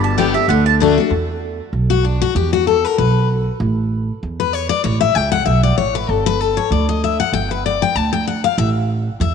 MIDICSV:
0, 0, Header, 1, 4, 480
1, 0, Start_track
1, 0, Tempo, 311365
1, 1711, Time_signature, 4, 2, 24, 8
1, 14406, End_track
2, 0, Start_track
2, 0, Title_t, "Mandolin"
2, 0, Program_c, 0, 25
2, 60, Note_on_c, 0, 81, 98
2, 268, Note_off_c, 0, 81, 0
2, 274, Note_on_c, 0, 79, 84
2, 522, Note_off_c, 0, 79, 0
2, 528, Note_on_c, 0, 76, 94
2, 742, Note_off_c, 0, 76, 0
2, 750, Note_on_c, 0, 78, 89
2, 1004, Note_off_c, 0, 78, 0
2, 1016, Note_on_c, 0, 81, 102
2, 1147, Note_off_c, 0, 81, 0
2, 14406, End_track
3, 0, Start_track
3, 0, Title_t, "Steel-string acoustic guitar"
3, 0, Program_c, 1, 25
3, 0, Note_on_c, 1, 43, 103
3, 271, Note_on_c, 1, 50, 84
3, 278, Note_on_c, 1, 55, 109
3, 286, Note_on_c, 1, 59, 95
3, 298, Note_on_c, 1, 67, 110
3, 520, Note_off_c, 1, 67, 0
3, 522, Note_off_c, 1, 50, 0
3, 525, Note_off_c, 1, 55, 0
3, 529, Note_off_c, 1, 59, 0
3, 538, Note_on_c, 1, 67, 61
3, 574, Note_on_c, 1, 59, 49
3, 713, Note_off_c, 1, 43, 0
3, 745, Note_off_c, 1, 67, 0
3, 763, Note_off_c, 1, 59, 0
3, 769, Note_on_c, 1, 50, 92
3, 1221, Note_off_c, 1, 50, 0
3, 1239, Note_on_c, 1, 50, 95
3, 1256, Note_on_c, 1, 57, 97
3, 1260, Note_on_c, 1, 62, 106
3, 1276, Note_on_c, 1, 66, 107
3, 1485, Note_off_c, 1, 66, 0
3, 1486, Note_off_c, 1, 50, 0
3, 1494, Note_off_c, 1, 57, 0
3, 1496, Note_off_c, 1, 62, 0
3, 1504, Note_on_c, 1, 66, 67
3, 1540, Note_on_c, 1, 62, 59
3, 1708, Note_off_c, 1, 66, 0
3, 1727, Note_off_c, 1, 62, 0
3, 2929, Note_on_c, 1, 66, 95
3, 3144, Note_off_c, 1, 66, 0
3, 3155, Note_on_c, 1, 62, 61
3, 3407, Note_off_c, 1, 62, 0
3, 3416, Note_on_c, 1, 66, 110
3, 3627, Note_off_c, 1, 66, 0
3, 3635, Note_on_c, 1, 67, 96
3, 3887, Note_off_c, 1, 67, 0
3, 3898, Note_on_c, 1, 66, 101
3, 4109, Note_off_c, 1, 66, 0
3, 4118, Note_on_c, 1, 69, 76
3, 4387, Note_off_c, 1, 69, 0
3, 4387, Note_on_c, 1, 70, 100
3, 4593, Note_off_c, 1, 70, 0
3, 4599, Note_on_c, 1, 71, 89
3, 5043, Note_off_c, 1, 71, 0
3, 6779, Note_on_c, 1, 71, 93
3, 6985, Note_off_c, 1, 71, 0
3, 6985, Note_on_c, 1, 73, 90
3, 7229, Note_off_c, 1, 73, 0
3, 7235, Note_on_c, 1, 74, 124
3, 7453, Note_off_c, 1, 74, 0
3, 7459, Note_on_c, 1, 73, 96
3, 7711, Note_off_c, 1, 73, 0
3, 7717, Note_on_c, 1, 76, 108
3, 7939, Note_off_c, 1, 76, 0
3, 7939, Note_on_c, 1, 79, 116
3, 8190, Note_off_c, 1, 79, 0
3, 8196, Note_on_c, 1, 78, 111
3, 8404, Note_off_c, 1, 78, 0
3, 8410, Note_on_c, 1, 76, 84
3, 8676, Note_off_c, 1, 76, 0
3, 8685, Note_on_c, 1, 74, 94
3, 8899, Note_off_c, 1, 74, 0
3, 8905, Note_on_c, 1, 73, 90
3, 9163, Note_off_c, 1, 73, 0
3, 9172, Note_on_c, 1, 71, 89
3, 9398, Note_off_c, 1, 71, 0
3, 9398, Note_on_c, 1, 69, 80
3, 9648, Note_off_c, 1, 69, 0
3, 9654, Note_on_c, 1, 71, 116
3, 9875, Note_off_c, 1, 71, 0
3, 9875, Note_on_c, 1, 69, 80
3, 10127, Note_on_c, 1, 73, 86
3, 10128, Note_off_c, 1, 69, 0
3, 10343, Note_off_c, 1, 73, 0
3, 10356, Note_on_c, 1, 74, 86
3, 10608, Note_off_c, 1, 74, 0
3, 10618, Note_on_c, 1, 75, 91
3, 10829, Note_off_c, 1, 75, 0
3, 10850, Note_on_c, 1, 76, 92
3, 11089, Note_off_c, 1, 76, 0
3, 11095, Note_on_c, 1, 78, 108
3, 11300, Note_off_c, 1, 78, 0
3, 11306, Note_on_c, 1, 79, 107
3, 11563, Note_off_c, 1, 79, 0
3, 11576, Note_on_c, 1, 71, 76
3, 11788, Note_off_c, 1, 71, 0
3, 11804, Note_on_c, 1, 74, 88
3, 12052, Note_off_c, 1, 74, 0
3, 12057, Note_on_c, 1, 79, 108
3, 12264, Note_off_c, 1, 79, 0
3, 12264, Note_on_c, 1, 81, 107
3, 12521, Note_off_c, 1, 81, 0
3, 12527, Note_on_c, 1, 79, 100
3, 12743, Note_off_c, 1, 79, 0
3, 12756, Note_on_c, 1, 78, 91
3, 13006, Note_off_c, 1, 78, 0
3, 13012, Note_on_c, 1, 77, 110
3, 13224, Note_off_c, 1, 77, 0
3, 13230, Note_on_c, 1, 76, 103
3, 13387, Note_off_c, 1, 76, 0
3, 14197, Note_on_c, 1, 76, 96
3, 14406, Note_off_c, 1, 76, 0
3, 14406, End_track
4, 0, Start_track
4, 0, Title_t, "Upright bass"
4, 0, Program_c, 2, 32
4, 0, Note_on_c, 2, 31, 110
4, 534, Note_off_c, 2, 31, 0
4, 741, Note_on_c, 2, 38, 99
4, 1494, Note_off_c, 2, 38, 0
4, 1699, Note_on_c, 2, 40, 99
4, 2454, Note_off_c, 2, 40, 0
4, 2662, Note_on_c, 2, 35, 86
4, 3416, Note_off_c, 2, 35, 0
4, 3624, Note_on_c, 2, 40, 97
4, 4377, Note_off_c, 2, 40, 0
4, 4598, Note_on_c, 2, 35, 90
4, 5346, Note_off_c, 2, 35, 0
4, 5549, Note_on_c, 2, 33, 108
4, 6301, Note_off_c, 2, 33, 0
4, 6518, Note_on_c, 2, 40, 88
4, 7266, Note_off_c, 2, 40, 0
4, 7475, Note_on_c, 2, 33, 102
4, 7850, Note_off_c, 2, 33, 0
4, 7955, Note_on_c, 2, 37, 92
4, 8363, Note_off_c, 2, 37, 0
4, 8428, Note_on_c, 2, 35, 89
4, 8839, Note_off_c, 2, 35, 0
4, 8904, Note_on_c, 2, 33, 73
4, 9317, Note_off_c, 2, 33, 0
4, 9384, Note_on_c, 2, 31, 98
4, 10137, Note_off_c, 2, 31, 0
4, 10337, Note_on_c, 2, 38, 91
4, 11092, Note_off_c, 2, 38, 0
4, 11292, Note_on_c, 2, 31, 90
4, 12049, Note_off_c, 2, 31, 0
4, 12260, Note_on_c, 2, 38, 86
4, 13013, Note_off_c, 2, 38, 0
4, 13222, Note_on_c, 2, 33, 111
4, 13974, Note_off_c, 2, 33, 0
4, 14181, Note_on_c, 2, 40, 92
4, 14406, Note_off_c, 2, 40, 0
4, 14406, End_track
0, 0, End_of_file